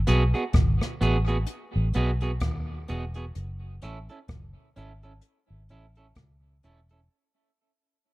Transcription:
0.07 0.32 B1 medium
0.07 0.22 B3 medium
0.07 0.23 F#4 medium
0.07 0.23 G#4 medium
0.07 closed hi-hat medium
0.34 0.44 B3 soft
0.34 0.43 F#4 medium
0.34 0.43 G#4 medium
0.34 closed hi-hat soft
0.53 0.79 G#1 medium
0.53 kick loud
0.53 cross-stick medium
0.53 closed hi-hat medium
0.81 cross-stick medium
1.01 1.44 A1 medium
1.01 1.16 B3 medium
1.01 1.16 F#4 medium
1.01 1.17 G#4 medium
1.01 closed hi-hat medium
1.28 1.37 B3 soft
1.28 1.37 F#4 medium
1.28 1.37 G#4 medium
1.28 closed hi-hat soft
1.46 closed hi-hat medium
1.76 1.94 A1 medium
1.93 2.38 B1 medium
1.93 2.10 B3 medium
1.93 2.10 F#4 medium
1.93 2.11 G#4 medium
1.93 closed hi-hat medium
2.20 2.31 B3 soft
2.20 2.31 F#4 medium
2.20 2.30 G#4 medium
2.20 closed hi-hat soft
2.40 2.85 D#2 medium
2.40 kick medium
2.40 cross-stick loud
2.40 closed hi-hat medium
2.88 3.32 E1 medium
2.88 3.04 B3 medium
2.88 3.04 F#4 medium
2.88 3.04 G#4 medium
2.88 closed hi-hat medium
3.14 3.25 B3 soft
3.14 3.24 F#4 medium
3.14 3.24 G#4 medium
3.14 closed hi-hat soft
3.35 3.79 F#1 medium
3.35 closed hi-hat medium
3.81 4.07 A1 medium
3.81 3.97 C#4 medium
3.81 3.98 E4 medium
3.81 3.98 A4 medium
3.81 closed hi-hat medium
4.09 4.19 C#4 soft
4.09 4.19 E4 soft
4.09 4.18 A4 medium
4.09 closed hi-hat soft
4.28 4.54 F#1 medium
4.28 kick loud
4.28 cross-stick medium
4.28 closed hi-hat medium
4.76 5.19 G#1 medium
4.76 4.91 C#4 medium
4.76 4.92 E4 medium
4.76 4.92 A4 medium
4.76 closed hi-hat medium
5.03 5.12 C#4 soft
5.03 5.12 E4 soft
5.03 5.12 A4 medium
5.03 closed hi-hat soft
5.21 closed hi-hat medium
5.50 5.68 G#1 medium
5.69 6.13 A1 medium
5.69 5.85 C#4 medium
5.69 5.85 E4 medium
5.69 5.86 A4 medium
5.69 closed hi-hat medium
5.95 6.06 C#4 medium
5.95 6.06 E4 medium
5.95 6.06 A4 medium
5.95 closed hi-hat soft
6.15 6.60 C#2 medium
6.15 kick medium
6.15 cross-stick loud
6.15 closed hi-hat medium
6.63 7.07 E1 medium
6.63 6.79 C#4 medium
6.63 6.79 E4 medium
6.63 6.79 A4 medium
6.63 closed hi-hat medium
6.89 7.00 C#4 soft
6.89 7.00 E4 soft
6.89 6.99 A4 medium
6.89 closed hi-hat soft

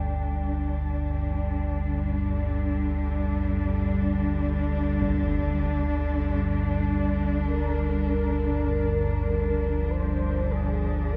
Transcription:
0.00 11.17 G1 medium
0.00 11.17 D2 medium
0.00 11.17 G2 medium
0.00 11.17 D3 medium
0.00 9.88 G3 medium
0.00 11.17 D4 medium
0.00 11.17 G5 medium
5.02 impact medium
7.46 8.04 A#4 medium
8.08 9.91 A#4 loud
9.52 11.17 F3 medium
9.90 10.52 C5 loud
10.51 11.14 G#4 loud
11.12 11.17 A#4 loud

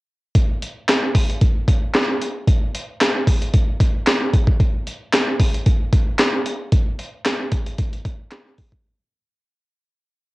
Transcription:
0.35 kick loud
0.35 closed hi-hat medium
0.62 closed hi-hat medium
0.88 snare loud
0.88 clap medium
0.88 closed hi-hat medium
1.15 kick medium
1.15 open hi-hat medium
1.30 closed hi-hat medium
1.41 kick loud
1.41 closed hi-hat medium
1.68 kick medium
1.68 closed hi-hat medium
1.94 snare loud
1.94 clap medium
1.94 closed hi-hat loud
2.22 closed hi-hat medium
2.48 kick loud
2.48 closed hi-hat medium
2.75 closed hi-hat medium
3.01 snare loud
3.01 clap medium
3.01 closed hi-hat loud
3.27 kick medium
3.27 open hi-hat medium
3.42 closed hi-hat medium
3.54 kick loud
3.54 closed hi-hat medium
3.80 kick medium
3.80 closed hi-hat medium
4.07 snare loud
4.07 clap medium
4.07 closed hi-hat loud
4.34 kick loud
4.34 closed hi-hat medium
4.47 kick medium
4.60 kick loud
4.60 closed hi-hat medium
4.87 closed hi-hat medium
5.13 snare loud
5.13 clap medium
5.13 closed hi-hat medium
5.40 kick medium
5.40 open hi-hat medium
5.54 closed hi-hat medium
5.66 kick loud
5.66 closed hi-hat medium
5.93 kick medium
5.93 closed hi-hat medium
6.19 snare loud
6.19 clap medium
6.19 closed hi-hat loud
6.46 closed hi-hat medium
6.72 kick loud
6.72 closed hi-hat medium
6.99 closed hi-hat medium
7.25 snare loud
7.25 clap medium
7.25 closed hi-hat medium
7.52 kick loud
7.52 closed hi-hat medium
7.66 closed hi-hat medium
7.78 kick loud
7.78 closed hi-hat medium
7.93 closed hi-hat soft
8.05 kick loud
8.05 closed hi-hat medium
8.31 snare loud
8.31 clap medium
8.31 closed hi-hat medium
8.58 kick loud
8.58 open hi-hat medium
8.72 kick medium

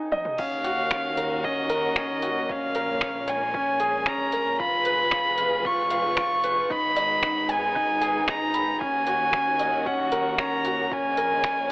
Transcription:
0.00 0.41 D#4 medium
0.00 0.12 D#5 medium
0.00 0.41 G#5 medium
0.12 0.37 D#5 loud
0.12 high tom medium
0.25 mid tom medium
0.38 2.47 D#2 medium
0.38 2.47 D#3 medium
0.38 4.56 A#3 medium
0.38 0.64 C#4 medium
0.38 2.47 C#4 medium
0.38 2.47 F#4 medium
0.38 1.46 F5 loud
0.38 kick loud
0.38 crash loud
0.64 0.90 F#4 medium
0.64 closed hi-hat medium
0.91 1.16 C#4 medium
0.91 finger snap medium
0.91 kick loud
1.17 1.43 A#4 medium
1.17 closed hi-hat medium
1.44 1.59 C#4 medium
1.44 2.52 D#5 medium
1.44 kick loud
1.70 1.95 A#4 loud
1.70 closed hi-hat medium
1.96 2.12 C#4 loud
1.96 finger snap loud
1.96 kick loud
2.22 2.38 F#4 medium
2.22 closed hi-hat medium
2.48 4.57 A#1 loud
2.48 4.57 G#3 medium
2.48 4.57 C#4 medium
2.48 2.74 C#4 medium
2.48 3.30 F5 loud
2.48 kick loud
2.75 3.01 A#4 medium
2.75 closed hi-hat medium
3.01 3.27 C#4 medium
3.01 finger snap medium
3.01 kick loud
3.28 3.53 C#5 medium
3.28 4.10 G#5 loud
3.28 closed hi-hat medium
3.54 3.69 C#4 medium
3.54 kick loud
3.80 4.05 G#4 medium
3.80 closed hi-hat medium
4.06 4.22 C#4 loud
4.06 4.60 A#5 loud
4.06 finger snap loud
4.06 kick loud
4.32 4.58 A#4 medium
4.32 closed hi-hat medium
4.59 6.68 F1 medium
4.59 6.68 F3 medium
4.59 6.68 F4 medium
4.59 4.85 F4 medium
4.59 6.68 G#4 medium
4.59 6.68 B4 medium
4.59 5.68 B5 loud
4.59 kick loud
4.85 5.11 B4 medium
4.85 closed hi-hat medium
5.11 5.37 F4 medium
5.11 finger snap medium
5.11 kick loud
5.38 5.64 F5 medium
5.38 closed hi-hat medium
5.65 5.80 F4 medium
5.65 6.73 C#6 loud
5.65 kick loud
5.90 6.16 F5 loud
5.90 closed hi-hat medium
6.17 6.33 F4 loud
6.17 finger snap loud
6.17 kick loud
6.44 6.59 B4 medium
6.44 closed hi-hat medium
6.70 8.78 G#1 medium
6.70 8.79 G#3 medium
6.70 8.79 B3 medium
6.70 8.79 D#4 medium
6.70 6.95 D#4 medium
6.70 7.53 B5 loud
6.70 kick loud
6.96 7.22 D#5 medium
6.96 closed hi-hat medium
7.23 7.48 D#4 medium
7.23 finger snap medium
7.23 kick loud
7.49 7.74 G#5 medium
7.49 8.31 G#5 loud
7.49 closed hi-hat medium
7.75 7.90 D#4 medium
7.75 kick loud
8.01 8.17 G#4 medium
8.01 closed hi-hat medium
8.28 8.43 D#4 medium
8.28 8.81 A#5 loud
8.28 finger snap medium
8.28 kick loud
8.54 8.79 B5 medium
8.54 closed hi-hat medium
8.80 10.89 D#2 medium
8.80 10.89 D#3 medium
8.80 11.72 A#3 medium
8.80 9.06 C#4 medium
8.80 10.89 C#4 medium
8.80 10.89 F#4 medium
8.80 9.88 G#5 loud
8.80 kick loud
9.07 9.32 F#4 medium
9.07 closed hi-hat medium
9.33 9.59 C#4 medium
9.33 finger snap medium
9.33 kick loud
9.59 9.85 D#5 medium
9.59 closed hi-hat medium
9.86 10.01 C#4 loud
9.86 10.41 F#5 loud
9.86 kick loud
10.12 10.37 A#4 loud
10.12 closed hi-hat medium
10.38 10.54 C#4 loud
10.38 10.94 A#5 medium
10.38 finger snap medium
10.38 kick loud
10.65 10.80 F#4 medium
10.65 closed hi-hat medium
10.91 11.72 A#1 medium
10.91 11.72 G#3 medium
10.91 11.72 C#4 medium
10.91 11.16 C#4 medium
10.91 11.72 G#5 loud
10.91 kick medium
11.17 11.43 A#4 medium
11.17 closed hi-hat medium
11.44 11.69 C#4 medium
11.44 finger snap medium
11.44 kick loud

